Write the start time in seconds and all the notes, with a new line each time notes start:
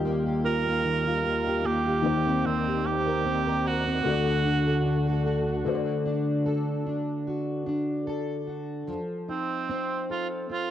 Already playing: D#2 D#3 G3 F4 G4 D#5
0.05 A#3
0.26 G4
0.44 F4 A#4
0.67 A#3
0.85 D#3
1.06 F4
1.25 A#3
1.47 G4
1.64 A#3 G4
1.87 G4
2.02 D#3 A#3 D#4 C5 D5
2.26 C4
2.45 D#3 C4
2.68 G4
2.85 C4 G4
3.07 A#4
3.25 C4
3.47 A#4
3.67 F#4
3.87 C4
4.04 D2 D3 A3 F#4
4.08 D5
4.27 F#4
4.45 D4
4.67 A4
4.86 D4
5.08 A4
5.26 F#4
5.48 D4
5.64 D3 A3 F#4 C5
5.75 D5
6.06 D4
6.46 A4
6.87 D4
7.27 F#4
7.66 D4
8.07 A4
8.47 F#4
8.87 F3
9.28 C4 D#4
9.69 C4
10.10 F4 A4
10.50 C4 F4